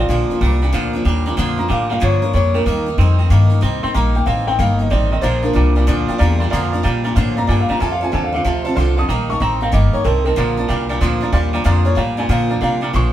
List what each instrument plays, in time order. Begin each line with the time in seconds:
Already playing: upright piano F4 D5
0.00 steel-string acoustic guitar A#3 D#4
0.09 upright bass A#1, steel-string acoustic guitar A#2 D3 F3 A#3 D4 A#4, clean electric guitar A#2 F3
0.30 steel-string acoustic guitar F3 A#3 D4 A#4, muted upright bass stroke
0.41 upright bass C2, clean electric guitar A#2 G3, steel-string acoustic guitar F3 A#3 D4 A#4
0.62 clean electric guitar A#2 G3, steel-string acoustic guitar F3 A#3 D4 A#4
0.72 upright bass D2, steel-string acoustic guitar A#2 D3 F3 A#3 D4 A#4, clean electric guitar A#2 F3
0.93 steel-string acoustic guitar F3 A#3 D4 A#4
1.05 upright bass D#2, clean electric guitar A#2 G3, steel-string acoustic guitar F3 A#3 D4 A#4
1.26 clean electric guitar A#2 G3, steel-string acoustic guitar F3 A#3 D4 A#4
1.37 upright bass F2, steel-string acoustic guitar A#2 D3 F3 A#3 D4 A#4, clean electric guitar A#2 F3
1.57 steel-string acoustic guitar F3 A#3 D4 A#4, upright piano A#5
1.68 upright bass A2, clean electric guitar A#2 G3, steel-string acoustic guitar F3 A#3 D4 A#4, upright piano F5
1.90 clean electric guitar A#2 G3, steel-string acoustic guitar F3 A#3 D4 A#4, upright piano F5
2.00 upright bass G2, steel-string acoustic guitar A#2 D3 F3 A#3 D4 A#4, clean electric guitar A#2 F3, upright piano C#5
2.22 steel-string acoustic guitar F3 A#3 D4 A#4, upright piano C#5
2.33 upright bass F2, clean electric guitar A#2 G3, steel-string acoustic guitar F3 A#3 D4 A#4, upright piano C#5
2.54 clean electric guitar A#2 G3, steel-string acoustic guitar F3 A#3 D4 A#4, upright piano A#4
2.66 upright bass D#2, clean electric guitar D#3 A#3, steel-string acoustic guitar D#3 G3 A#3 D#4 A#4
2.86 steel-string acoustic guitar A#3 D#4 A#4
2.98 upright bass F2, clean electric guitar D#3 C4, steel-string acoustic guitar G3 A#3 D#4 A#4
3.18 clean electric guitar D#3 C4, steel-string acoustic guitar A#3 D#4 A#4
3.30 upright bass G2, steel-string acoustic guitar D#3 G3 A#3 D#4 A#4, clean electric guitar D#3 A#3
3.50 steel-string acoustic guitar A#3 D#4 A#4
3.61 upright bass C2, clean electric guitar D#3 C4, steel-string acoustic guitar G3 A#3 D#4 A#4
3.83 clean electric guitar D#3 C4, steel-string acoustic guitar A#3 D#4 A#4, upright piano C6, muted upright bass stroke
3.94 upright bass A#1, steel-string acoustic guitar D#3 G3 A#3 D#4 A#4, clean electric guitar D#3 A#3, upright piano A#5
4.15 steel-string acoustic guitar A#3 D#4 A#4, upright piano G5
4.26 upright bass A1, clean electric guitar D#3 C4, steel-string acoustic guitar G3 A#3 D#4 A#4, upright piano F5
4.47 clean electric guitar D#3 C4, steel-string acoustic guitar A#3 D#4 A#4, upright piano G5
4.59 upright bass G1, steel-string acoustic guitar D#3 G3 A#3 D#4 A#4, clean electric guitar D#3 A#3, upright piano F5
4.79 steel-string acoustic guitar A#3 D#4 A#4, upright piano D#5
4.90 upright bass A1, clean electric guitar D#3 C4, steel-string acoustic guitar G3 A#3 D#4 A#4, upright piano D5
5.11 clean electric guitar D#3 C4, steel-string acoustic guitar A#3 D#4 A#4, upright piano D#5
5.21 upright bass A#1, steel-string acoustic guitar A#2 D3 F3 A#3 D4 A#4, clean electric guitar A#2 F3, upright piano C5, honky-tonk piano D5 F5 A#5
5.42 steel-string acoustic guitar F3 A#3 D4 A#4, upright piano D4 A#4, honky-tonk piano D5 F5 A#5
5.53 upright bass C2, clean electric guitar A#2 G3, steel-string acoustic guitar F3 A#3 D4 A#4, honky-tonk piano D5 F5 A#5
5.75 clean electric guitar A#2 G3, steel-string acoustic guitar F3 A#3 D4 A#4, honky-tonk piano D5 F5 G5
5.87 upright bass D2, steel-string acoustic guitar A#2 D3 F3 A#3 D4 A#4, clean electric guitar A#2 F3, honky-tonk piano D5 F5 C6
6.07 steel-string acoustic guitar A#3 D4 A#4, honky-tonk piano D5 F5 G5, muted upright bass stroke
6.12 steel-string acoustic guitar F3
6.18 upright bass E2, clean electric guitar A#2 G3, steel-string acoustic guitar F3 A#3 D4, honky-tonk piano D5 F5 A#5
6.23 steel-string acoustic guitar A#4
6.38 clean electric guitar A#2 G3, steel-string acoustic guitar D4 A#4, honky-tonk piano D5 F5 C6
6.43 steel-string acoustic guitar F3 A#3
6.50 upright bass F2, clean electric guitar A#2 F3, steel-string acoustic guitar A#2 D3 F3 A#3, honky-tonk piano D5 F5 A#5
6.55 steel-string acoustic guitar D4 A#4
6.72 steel-string acoustic guitar A#3 D4 A#4, honky-tonk piano D5 F5 A#5
6.76 steel-string acoustic guitar F3
6.83 clean electric guitar A#2 G3, upright bass A#2, steel-string acoustic guitar F3 A#3 D4, honky-tonk piano D5 F5 A#5
6.87 steel-string acoustic guitar A#4
7.03 clean electric guitar A#2 G3, steel-string acoustic guitar A#3 D4 A#4, honky-tonk piano D5 F5 A#5
7.08 steel-string acoustic guitar F3
7.15 upright bass A2, clean electric guitar A#2 F3, steel-string acoustic guitar A#2 D3 F3 A#3 D4 A#4, honky-tonk piano D5 F5 C6
7.36 steel-string acoustic guitar A#3 D4 A#4, honky-tonk piano D5 F5 A#5, upright piano A#5
7.41 steel-string acoustic guitar F3
7.47 upright bass G2, clean electric guitar A#2 G3, steel-string acoustic guitar F3 A#3 D4 A#4, honky-tonk piano D5 F5 A#5, upright piano G#5
7.61 upright piano F5
7.68 clean electric guitar A#2 G3, steel-string acoustic guitar F3 A#3 D4 A#4, honky-tonk piano D5 F5 A#5, upright piano A#5, muted upright bass stroke
7.79 clean electric guitar F2 C3, upright bass F2, steel-string acoustic guitar F3 C4 F4 A4, honky-tonk piano C5 F5 A5, upright piano G#5
7.92 upright piano F5
8.00 steel-string acoustic guitar C4 F4 A4, honky-tonk piano C5 F5 A5, upright piano G#5
8.12 upright bass D#2, clean electric guitar F2 D3, steel-string acoustic guitar F3 C4 F4 A4, honky-tonk piano C5 F5 A5, upright piano G#5
8.24 upright piano F5
8.32 clean electric guitar F2 D3, steel-string acoustic guitar F4 A4, honky-tonk piano C5 F5 G5, upright piano F5
8.36 steel-string acoustic guitar C4
8.43 upright bass D2, clean electric guitar F2 C3, steel-string acoustic guitar F3 C4 F4 A4, honky-tonk piano C5 F5 A5
8.64 steel-string acoustic guitar F4 A4, honky-tonk piano C5 F5 A5
8.68 steel-string acoustic guitar C4
8.75 upright bass C2, clean electric guitar F2 D3, steel-string acoustic guitar F3 C4 F4, honky-tonk piano C5 F5 C6
8.80 steel-string acoustic guitar A4
8.96 clean electric guitar F2 D3, steel-string acoustic guitar F4 A4, honky-tonk piano C5 F5 A5, upright piano D#6
9.01 steel-string acoustic guitar C4
9.08 upright bass A#1, clean electric guitar D#3 A#3, steel-string acoustic guitar D#3 G3 A#3 D#4 A#4, honky-tonk piano D#5 G5 A#5
9.29 steel-string acoustic guitar A#3 D#4 A#4, honky-tonk piano D#5 G5 A5, upright piano C#6
9.40 upright bass A1, clean electric guitar D#3 C4, steel-string acoustic guitar G3 A#3 D#4 A#4, honky-tonk piano D#5 G5 A#5, upright piano A#5
9.61 clean electric guitar D#3 C4, steel-string acoustic guitar A#3 D#4 A#4, honky-tonk piano D#5 G5 A#5, upright piano F5
9.72 upright bass G1, steel-string acoustic guitar D#3 G3 A#3 D#4 A#4, clean electric guitar D#3 A#3, honky-tonk piano D#5 G5 A#5, upright piano D#5
9.93 steel-string acoustic guitar A#3 D#4 A#4, upright piano C#5, honky-tonk piano D#5 G5 A#5
10.04 upright bass C2, clean electric guitar D#3 C4, steel-string acoustic guitar G3 A#3 D#4 A#4, upright piano A#4, honky-tonk piano D#5 G5 A5
10.25 clean electric guitar D#3 C4, steel-string acoustic guitar D#4 A#4, upright piano A#4, honky-tonk piano D#5 G5 A5
10.29 steel-string acoustic guitar A#3
10.36 upright bass A#1, steel-string acoustic guitar A#2 D3 F3 A#3 D4 A#4, clean electric guitar A#2 F3, honky-tonk piano D5 F5 A#5
10.57 steel-string acoustic guitar F3 A#3 D4 A#4, honky-tonk piano D5 F5 A5
10.68 upright bass C2, clean electric guitar A#2 G3, steel-string acoustic guitar F3 A#3 D4 A#4, honky-tonk piano D5 F5 G5
10.89 clean electric guitar A#2 G3, steel-string acoustic guitar F3 A#3 D4 A#4, honky-tonk piano D5 F5 A#5
11.00 upright bass D2, clean electric guitar A#2 F3, steel-string acoustic guitar A#2 D3 F3 A#3 D4 A#4, honky-tonk piano D5 F5 C6
11.20 steel-string acoustic guitar A#3 D4 A#4, honky-tonk piano D5 F5 A#5
11.25 steel-string acoustic guitar F3
11.32 upright bass D#2, clean electric guitar A#2 G3, steel-string acoustic guitar F3 A#3 D4 A#4, honky-tonk piano D5 F5 C6
11.53 clean electric guitar A#2 G3, steel-string acoustic guitar F3 A#3 D4 A#4, honky-tonk piano D5 F5 A#5
11.64 upright bass F2, steel-string acoustic guitar A#2 D3 F3 A#3 D4 A#4, clean electric guitar A#2 F3, honky-tonk piano D5 F5 A#5
11.85 steel-string acoustic guitar F3 A#3 D4 A#4, upright piano C#5, honky-tonk piano D5 F5 A#5
11.95 upright bass A2, clean electric guitar A#2 G3, steel-string acoustic guitar F3 A#3 D4 A#4, honky-tonk piano D5 F5 A#5, upright piano F5
12.17 clean electric guitar A#2 G3, steel-string acoustic guitar F3 A#3 D4 A#4, honky-tonk piano D5 F5 A#5, upright piano G#5
12.29 steel-string acoustic guitar A#2 D3 F3 A#3 D4 A#4, clean electric guitar A#2 F3, upright bass A#2, honky-tonk piano D5 F5 G5, upright piano F5
12.49 steel-string acoustic guitar F3 A#3 D4 A#4, honky-tonk piano D5 F5 A#5
12.61 clean electric guitar A#2 G3, upright bass C3, steel-string acoustic guitar F3 A#3 D4 A#4, honky-tonk piano D5 F5 A#5, upright piano F5
12.81 clean electric guitar A#2 G3, steel-string acoustic guitar F3 A#3 D4 A#4, honky-tonk piano D5 F5 A#5
12.93 upright bass A#1, clean electric guitar A#2 F3, steel-string acoustic guitar A#2 D3 F3 A#3 D4 A#4, honky-tonk piano C#6